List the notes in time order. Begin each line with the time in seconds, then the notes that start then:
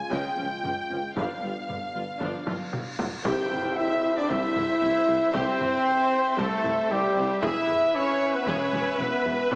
Already playing: G#3 F4 G#5
0.11 C#2 C#3 G#3 G5, taiko
0.37 C#2 F3 C#4
0.63 C#2 G#3 F4, taiko low-mid
0.90 C#2 F3 C#4
1.16 G1 G2 F3 B3 D4 F5, taiko, cymbal swell
1.42 G1 G2 G3 F4
1.68 G1 G2 B3 G4, taiko low-mid
1.95 G1 G2 G3 F4
2.20 G1 G2 F3 D4, taiko
2.46 G1 G2 G3 F4, taiko high
2.73 G1 G2 B3 G4, taiko mid
2.99 G1 G2 G3 F4, taiko low
3.25 C2 G4 C5 E5 G5, taiko, tam-tam, impact
3.51 taiko low-mid
3.77 E4 E5
4.16 D4 D5
4.27 C2 E4 G4 E5, taiko
4.55 C2 E4, taiko low-mid
4.82 C2 C4
5.07 C2 E4
5.32 C2 C4 G4 C5, taiko
5.60 taiko low-mid
6.36 C2 A3 G4 A4, taiko
6.63 C2 E4, taiko low-mid
6.89 C2 G3 C4 G4
7.15 C2 E4
7.40 E1 E2 E4 G#4 B4 E5, taiko
7.68 taiko low-mid
7.93 C#4 C#5
8.32 B3 B4
8.46 E1 E2 C#4 G#4 C#5, taiko
8.72 E1 E2 E4, taiko low-mid
8.98 E1 E2 B3 B4
9.25 E1 E2 E4
9.51 E1 E2 B3 G#4 B4, taiko